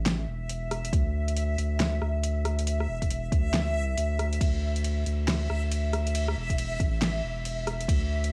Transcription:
0.00 0.26 A1 loud
0.00 8.32 E5 medium
0.06 snare loud
0.06 closed hi-hat medium
0.28 0.92 E1 loud
0.49 closed hi-hat medium
0.71 cross-stick medium
0.71 closed hi-hat medium
0.85 closed hi-hat medium
0.93 1.57 D2 loud
0.93 kick loud
0.93 closed hi-hat medium
1.28 closed hi-hat medium
1.37 closed hi-hat medium
1.58 2.00 D2 loud
1.58 closed hi-hat medium
1.80 snare loud
1.80 closed hi-hat medium
2.02 2.87 D2 loud
2.02 cross-stick medium
2.24 closed hi-hat medium
2.45 cross-stick medium
2.45 closed hi-hat medium
2.59 closed hi-hat medium
2.67 closed hi-hat medium
2.80 cross-stick medium
2.88 3.31 E1 loud
3.02 kick medium
3.02 closed hi-hat medium
3.10 closed hi-hat medium
3.32 3.77 D2 loud
3.32 kick loud
3.32 closed hi-hat soft
3.54 snare loud
3.54 closed hi-hat medium
3.77 3.96 C#2 loud
3.97 4.40 D2 loud
3.97 closed hi-hat medium
4.19 cross-stick medium
4.19 closed hi-hat medium
4.33 closed hi-hat medium
4.41 5.05 D2 loud
4.41 kick loud
4.41 closed hi-hat medium
4.41 ride medium
4.76 closed hi-hat soft
4.84 closed hi-hat medium
4.84 ride soft
5.06 5.48 D2 loud
5.06 closed hi-hat soft
5.28 snare loud
5.28 closed hi-hat medium
5.28 ride medium
5.50 6.35 D2 loud
5.50 cross-stick medium
5.71 closed hi-hat medium
5.71 ride soft
5.93 cross-stick medium
5.93 closed hi-hat medium
6.07 closed hi-hat medium
6.15 closed hi-hat medium
6.15 ride medium
6.28 cross-stick medium
6.37 6.79 E1 loud
6.50 kick medium
6.50 closed hi-hat medium
6.58 closed hi-hat medium
6.58 ride soft
6.80 7.22 A1 loud
6.80 kick loud
6.80 closed hi-hat soft
7.02 snare loud
7.02 closed hi-hat medium
7.02 ride medium
7.23 7.87 E1 loud
7.45 closed hi-hat medium
7.45 ride soft
7.67 cross-stick medium
7.67 closed hi-hat medium
7.81 closed hi-hat soft
7.88 8.32 D2 loud
7.88 kick loud
7.88 closed hi-hat medium
7.88 ride medium
8.24 closed hi-hat medium

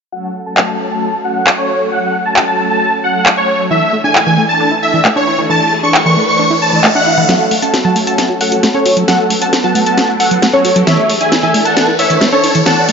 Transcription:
0.12 0.35 F#5 medium
0.46 0.61 A5 medium
0.57 clap loud
0.68 0.84 A5 medium
0.91 1.14 A5 medium
1.24 1.47 F#5 medium
1.47 clap loud
1.58 1.81 C#5 medium
1.92 2.14 F#5 loud
2.25 2.40 A5 medium
2.36 clap loud
2.48 2.63 A5 medium
2.70 2.93 A5 medium
3.04 3.26 F#5 medium
3.26 clap loud
3.37 3.60 C#5 medium
3.71 3.81 E3 medium
3.71 3.93 E5 loud
3.71 riser medium
3.93 3.97 A3 medium
4.04 4.14 D4 medium
4.04 4.19 G#5 medium
4.15 4.19 E4 medium
4.15 clap loud
4.26 4.37 E3 medium
4.26 4.42 G#5 medium
4.38 4.45 A3 medium
4.49 4.72 A5 medium
4.60 4.70 D4 medium
4.71 4.75 E4 medium
4.83 5.05 E5 medium
4.94 5.00 E3 medium
5.05 5.09 A3 medium
5.05 clap loud
5.16 5.26 D4 loud
5.16 5.39 C#5 medium
5.27 5.34 E4 medium
5.38 5.45 E3 loud
5.50 5.60 E3 loud
5.50 5.73 A5 loud
5.72 5.76 A3 medium
5.83 5.93 D4 medium
5.83 5.99 C#6 medium
5.94 5.99 E4 medium
5.94 clap loud
6.06 6.16 E3 medium
6.06 6.21 C#6 medium
6.17 6.24 A3 medium
6.28 6.51 C#6 medium
6.39 6.49 D4 medium
6.50 6.54 E4 medium
6.62 6.85 A5 loud
6.73 6.80 E3 medium
6.84 6.88 A3 medium
6.84 clap loud
6.95 7.05 D4 loud
6.95 7.18 F#5 medium
7.06 7.13 E4 medium
7.18 7.24 E3 loud
7.29 7.39 F#3 loud
7.29 7.52 A4 medium
7.29 7.52 F#5 loud
7.29 snare soft
7.29 closed hi-hat medium
7.29 riser medium
7.51 7.55 A3 medium
7.51 open hi-hat loud
7.62 7.72 C#4 medium
7.62 7.78 F#5 medium
7.62 7.78 A5 medium
7.62 closed hi-hat medium
7.74 7.78 F#4 medium
7.74 snare soft
7.74 closed hi-hat medium
7.85 7.95 F#3 medium
7.85 8.00 F#5 medium
7.85 8.00 A5 medium
7.96 8.03 A3 medium
7.96 open hi-hat medium
8.07 8.30 F#5 medium
8.07 8.30 A5 loud
8.07 8.30 A5 medium
8.07 closed hi-hat medium
8.18 8.28 C#4 medium
8.18 snare soft
8.18 closed hi-hat medium
8.30 8.34 F#4 medium
8.41 8.64 A4 medium
8.41 8.64 F#5 loud
8.41 open hi-hat loud
8.52 8.59 F#3 medium
8.52 closed hi-hat medium
8.63 8.67 A3 medium
8.63 snare soft
8.63 closed hi-hat medium
8.74 8.84 C#4 loud
8.74 8.97 A4 medium
8.74 8.97 C#5 loud
8.74 8.97 C#5 medium
8.86 8.92 F#4 medium
8.86 open hi-hat loud
8.97 9.03 F#3 loud
8.97 closed hi-hat medium
9.08 9.18 F#3 loud
9.08 9.31 A4 medium
9.08 9.31 F#5 loud
9.08 snare soft
9.08 closed hi-hat medium
9.30 9.34 A3 medium
9.30 open hi-hat loud
9.41 9.52 C#4 medium
9.41 9.57 F#5 medium
9.41 9.57 A5 medium
9.41 closed hi-hat medium
9.53 9.57 F#4 medium
9.53 snare medium
9.53 closed hi-hat medium
9.64 9.74 F#3 loud
9.64 9.79 F#5 medium
9.64 9.79 A5 loud
9.64 9.79 A5 medium
9.75 9.82 A3 medium
9.75 open hi-hat loud
9.86 10.09 F#5 medium
9.86 10.09 A5 medium
9.86 closed hi-hat medium
9.97 10.08 C#4 medium
9.97 snare soft
9.97 closed hi-hat medium
10.09 10.13 F#4 medium
10.20 10.43 A4 medium
10.20 10.43 F#5 medium
10.20 10.43 F#5 loud
10.20 open hi-hat loud
10.31 10.38 F#3 medium
10.31 closed hi-hat medium
10.42 10.46 A3 medium
10.42 snare medium
10.42 closed hi-hat medium
10.53 10.64 C#4 loud
10.53 10.76 A4 medium
10.53 10.76 C#5 loud
10.53 10.76 C#5 medium
10.65 10.71 F#4 medium
10.65 open hi-hat loud
10.76 10.83 F#3 loud
10.76 closed hi-hat medium
10.87 10.97 E3 loud
10.87 11.10 C#5 medium
10.87 11.10 E5 loud
10.87 snare medium
10.87 closed hi-hat medium
11.09 11.13 A3 medium
11.09 open hi-hat loud
11.21 11.31 D4 medium
11.21 11.36 E5 medium
11.21 11.36 G#5 medium
11.21 closed hi-hat medium
11.32 11.36 E4 medium
11.32 snare medium
11.32 closed hi-hat medium
11.43 11.53 E3 medium
11.43 11.58 E5 medium
11.43 11.58 G#5 medium
11.54 11.61 A3 medium
11.54 open hi-hat loud
11.65 11.88 F#5 medium
11.65 11.88 A5 medium
11.65 closed hi-hat medium
11.77 11.87 D4 medium
11.77 snare medium
11.77 closed hi-hat medium
11.88 11.92 E4 medium
11.99 12.22 C#5 medium
11.99 12.22 E5 medium
11.99 open hi-hat loud
12.10 12.17 E3 medium
12.10 closed hi-hat medium
12.21 12.25 A3 medium
12.21 snare medium
12.21 closed hi-hat medium
12.32 12.43 D4 loud
12.32 12.55 A4 medium
12.32 12.55 C#5 medium
12.32 12.55 C#5 loud
12.44 12.50 E4 medium
12.44 open hi-hat loud
12.55 12.62 E3 loud
12.55 closed hi-hat medium
12.66 12.76 E3 loud
12.66 12.89 F#5 medium
12.66 12.89 A5 loud
12.66 snare medium
12.66 closed hi-hat medium
12.88 12.92 A3 medium
12.88 open hi-hat loud

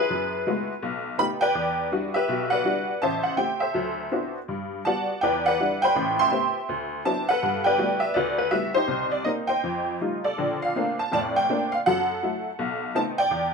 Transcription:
0.00 0.46 E4 medium
0.00 0.79 G#4 medium
0.00 1.22 B4 medium
0.10 0.42 F#2 medium
0.47 0.71 G#3 soft
0.47 0.71 A3 soft
0.47 0.72 B3 soft
0.47 0.72 E4 soft
0.47 0.72 F#4 medium
0.83 1.14 B1 medium
1.18 1.43 A3 soft
1.18 1.43 B3 soft
1.18 1.43 D#4 soft
1.18 1.43 G4 medium
1.18 1.24 B5 medium
1.41 2.11 B4 medium
1.41 2.11 D5 medium
1.41 1.88 G5 loud
1.55 1.86 E2 medium
1.92 2.16 G3 soft
1.92 2.16 D4 soft
1.92 2.16 E4 soft
1.92 2.17 F#4 medium
2.14 2.84 G4 medium
2.14 2.51 B4 medium
2.14 2.52 E5 medium
2.29 2.60 B1 medium
2.29 2.60 B2 medium
2.50 2.98 B4 medium
2.50 2.98 D5 medium
2.50 3.02 F#5 medium
2.65 2.89 G3 soft
2.65 2.89 D4 soft
2.65 2.89 E4 soft
2.65 2.89 F#4 medium
3.02 3.33 A1 medium
3.02 3.60 C5 medium
3.02 3.59 E5 medium
3.02 3.23 A5 medium
3.23 3.36 F#5 medium
3.37 3.62 A3 soft
3.37 3.62 C4 soft
3.37 3.62 G4 soft
3.37 3.59 G5 medium
3.60 4.32 A4 soft
3.60 4.32 C5 soft
3.60 4.31 E5 medium
3.74 4.07 D2 medium
3.74 4.06 F#3 medium
4.12 4.37 B3 soft
4.12 4.37 C4 soft
4.12 4.37 D4 soft
4.12 4.37 E4 soft
4.12 4.37 F#4 soft
4.48 4.81 G2 medium
4.85 5.11 G3 soft
4.85 5.11 B3 soft
4.85 5.11 F#4 soft
4.85 5.21 D5 medium
4.85 5.21 F#5 medium
4.85 5.20 A5 medium
5.21 5.55 E2 medium
5.21 5.55 E3 medium
5.21 5.47 B4 medium
5.21 5.46 D5 medium
5.21 5.46 G5 medium
5.46 5.94 B4 medium
5.46 5.94 D5 medium
5.46 5.80 F#5 medium
5.60 5.84 G3 soft
5.60 5.84 D4 soft
5.60 5.85 E4 soft
5.82 6.52 C5 medium
5.82 6.19 G5 loud
5.82 6.53 B5 medium
5.96 6.27 A1 medium
5.96 6.27 A2 medium
6.19 7.03 E5 medium
6.19 6.66 G5 medium
6.19 7.02 C6 loud
6.31 6.56 A3 soft
6.31 6.57 B3 soft
6.31 6.57 C4 soft
6.31 6.57 G4 soft
6.69 7.01 D2 medium
7.05 7.30 F#3 soft
7.05 7.30 B3 soft
7.05 7.30 C4 soft
7.05 7.31 D4 soft
7.05 7.31 E4 medium
7.05 7.29 A5 medium
7.29 7.99 A4 medium
7.29 7.65 B4 medium
7.29 7.63 F#5 medium
7.43 7.74 G2 medium
7.64 8.15 B4 medium
7.64 8.13 D5 medium
7.64 7.99 G5 medium
7.78 8.03 G3 soft
7.78 8.04 A3 soft
7.78 8.04 B3 soft
7.78 8.04 E4 soft
7.78 8.04 F#4 medium
8.00 8.15 E5 medium
8.14 8.47 D2 medium
8.14 8.51 F#4 medium
8.14 8.37 B4 medium
8.14 8.36 D5 medium
8.38 8.52 B4 medium
8.51 8.76 G3 medium
8.51 8.76 A3 soft
8.51 8.76 B3 soft
8.51 8.77 E4 soft
8.51 8.77 F#4 medium
8.51 8.75 E5 medium
8.74 9.25 D#4 medium
8.74 9.46 G4 medium
8.74 9.09 C5 medium
8.88 9.20 C2 medium
9.12 9.24 D5 medium
9.24 9.50 A#3 soft
9.24 9.51 C4 soft
9.24 9.51 D#4 medium
9.24 9.30 D#5 medium
9.47 10.21 C5 medium
9.47 10.21 D#5 medium
9.47 9.97 G5 medium
9.64 9.96 F2 medium
10.01 10.27 G3 soft
10.01 10.27 A3 soft
10.01 10.27 D#4 soft
10.01 10.27 F4 soft
10.24 10.96 A4 medium
10.24 10.63 D5 medium
10.38 10.71 A#1 medium
10.38 10.71 D3 medium
10.62 11.01 F5 medium
10.76 11.01 A3 soft
10.76 11.01 A#3 soft
10.76 11.01 C4 soft
10.76 11.01 D4 medium
10.99 11.12 A5 medium
11.12 11.44 F1 medium
11.12 11.44 A2 medium
11.12 11.83 D5 medium
11.12 11.18 A5 medium
11.36 11.74 G5 medium
11.49 11.75 A3 medium
11.49 11.74 A#3 soft
11.49 11.74 C4 soft
11.49 11.75 D4 medium
11.72 11.77 F5 medium
11.86 12.18 F#2 medium
11.86 12.18 F#3 medium
11.86 12.92 A4 medium
11.86 12.99 F#5 loud
12.23 12.47 F#3 soft
12.23 12.48 A3 soft
12.23 12.48 E4 medium
12.59 12.91 B1 medium
12.95 13.20 A3 medium
12.95 13.20 B3 soft
12.95 13.20 C4 soft
12.95 13.20 D#4 medium
12.95 13.01 A5 medium
13.18 13.54 D5 medium
13.18 13.52 G5 loud
13.31 13.54 E2 medium

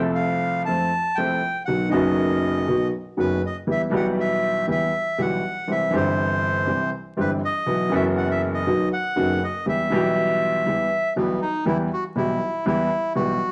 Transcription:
0.00 0.63 C2 medium
0.00 0.63 C3 medium
0.00 0.62 F3 medium
0.00 0.63 A3 medium
0.00 0.64 C4 medium
0.00 0.64 A4 medium
0.15 0.62 F5 medium
0.65 0.88 F2 soft
0.65 0.88 F3 soft
0.65 0.88 A3 soft
0.65 0.88 C4 soft
0.65 0.88 A4 soft
0.65 1.18 A5 medium
1.15 1.38 C2 medium
1.15 1.38 C3 medium
1.15 1.38 F3 soft
1.15 1.38 A3 soft
1.15 1.38 C4 soft
1.15 1.38 A4 soft
1.15 1.62 G5 medium
1.65 1.88 B1 soft
1.65 1.89 B2 soft
1.65 1.88 D#3 soft
1.65 1.88 F#3 soft
1.65 1.89 B3 soft
1.65 1.89 F#4 soft
1.65 1.89 F#5 medium
1.90 2.64 F#1 medium
1.90 2.64 F#2 medium
1.90 2.62 D#3 medium
1.90 2.63 F#3 medium
1.90 2.64 B3 medium
1.90 2.88 D#5 medium
1.94 2.65 F#4 medium
2.67 2.89 B1 soft
2.67 2.89 B2 soft
2.67 2.89 D#3 soft
2.67 2.89 F#3 soft
2.67 2.89 B3 soft
2.67 2.89 F#4 soft
3.17 3.39 F#1 soft
3.17 3.39 F#2 soft
3.17 3.38 D#3 soft
3.17 3.39 F#3 soft
3.17 3.39 B3 soft
3.17 3.39 F#4 soft
3.17 3.42 B4 medium
3.46 3.57 D#5 medium
3.67 3.89 E2 soft
3.67 3.88 E3 soft
3.67 3.89 G3 soft
3.67 3.89 B3 soft
3.67 3.89 G4 soft
3.71 3.82 E5 medium
3.90 4.64 B1 medium
3.90 4.64 B2 medium
3.90 4.63 E3 medium
3.90 4.64 G3 medium
3.90 4.65 B3 medium
3.94 4.65 G4 medium
3.94 4.07 F#5 medium
4.20 4.66 E5 medium
4.67 4.89 E2 soft
4.67 4.89 E3 soft
4.67 4.89 G3 soft
4.67 4.90 B3 soft
4.67 4.89 G4 soft
4.67 5.21 E5 medium
5.18 5.39 B1 medium
5.18 5.39 B2 soft
5.18 5.39 E3 soft
5.18 5.39 G3 soft
5.18 5.39 B3 soft
5.18 5.40 G4 soft
5.18 5.71 F#5 medium
5.67 5.89 C2 soft
5.67 5.89 C3 soft
5.67 5.89 E3 soft
5.67 5.89 G3 soft
5.67 5.89 C4 soft
5.67 5.90 G4 soft
5.67 5.96 E5 medium
5.91 6.64 G1 medium
5.91 6.64 G2 medium
5.91 6.63 E3 medium
5.91 6.64 G3 medium
5.91 6.64 C4 medium
5.95 6.65 G4 medium
5.95 6.90 C5 medium
6.67 6.88 C2 soft
6.67 6.88 C3 soft
6.67 6.88 E3 soft
6.67 6.89 G3 soft
6.67 6.88 C4 soft
6.67 6.88 G4 soft
7.17 7.38 G1 soft
7.17 7.38 G2 medium
7.17 7.38 E3 soft
7.17 7.38 G3 soft
7.17 7.38 C4 soft
7.17 7.38 G4 soft
7.17 7.31 B4 medium
7.45 7.95 D#5 medium
7.66 7.88 B1 soft
7.66 7.88 B2 soft
7.66 7.88 E3 soft
7.66 7.88 F#3 soft
7.66 7.88 B3 soft
7.66 7.88 F#4 soft
7.89 8.63 F#1 medium
7.89 8.63 F#2 medium
7.89 8.61 E3 medium
7.89 8.62 F#3 medium
7.89 8.63 B3 medium
7.93 8.63 F#4 medium
7.93 8.05 E5 medium
8.17 8.29 F#5 medium
8.31 8.42 E5 medium
8.54 8.89 D#5 medium
8.66 8.88 B1 soft
8.66 8.88 B2 soft
8.66 8.88 D#3 soft
8.66 8.87 F#3 soft
8.66 8.88 B3 soft
8.66 8.88 F#4 soft
8.93 9.43 F#5 loud
9.16 9.37 F#1 medium
9.16 9.37 F#2 medium
9.16 9.37 D#3 soft
9.16 9.37 F#3 soft
9.16 9.37 B3 soft
9.16 9.37 F#4 soft
9.44 9.66 D#5 medium
9.66 9.87 E2 soft
9.66 9.87 E3 soft
9.66 9.87 G3 soft
9.66 9.87 B3 soft
9.66 9.87 G4 soft
9.66 11.13 E5 medium
9.90 10.63 B1 medium
9.90 10.63 B2 medium
9.90 10.62 E3 medium
9.90 10.63 G3 medium
9.90 10.63 B3 medium
9.94 10.64 G4 medium
10.66 10.88 E2 soft
10.66 10.87 E3 soft
10.66 10.87 G3 soft
10.66 10.87 B3 soft
10.66 10.87 G4 soft
11.16 11.38 B1 medium
11.16 11.38 B2 medium
11.16 11.37 E3 soft
11.16 11.38 G3 soft
11.16 11.38 B3 soft
11.16 11.40 B3 medium
11.16 11.38 G4 soft
11.42 11.65 D#4 medium
11.65 11.87 E2 medium
11.65 11.87 E3 medium
11.65 11.87 G3 medium
11.65 11.87 B3 soft
11.65 11.78 E4 medium
11.65 11.87 G4 medium
11.93 12.04 F#4 medium
12.15 12.37 B1 medium
12.15 12.38 B2 medium
12.15 12.37 E3 soft
12.15 12.37 G3 soft
12.15 12.37 B3 soft
12.15 12.65 E4 medium
12.15 12.38 G4 soft
12.66 12.87 E2 medium
12.66 12.87 E3 medium
12.66 12.87 G3 medium
12.66 12.88 B3 medium
12.66 13.13 E4 medium
12.66 12.87 G4 medium
13.15 13.37 B1 soft
13.15 13.37 B2 soft
13.15 13.37 E3 soft
13.15 13.37 G3 soft
13.15 13.37 B3 soft
13.15 13.52 F#4 medium
13.15 13.37 G4 soft

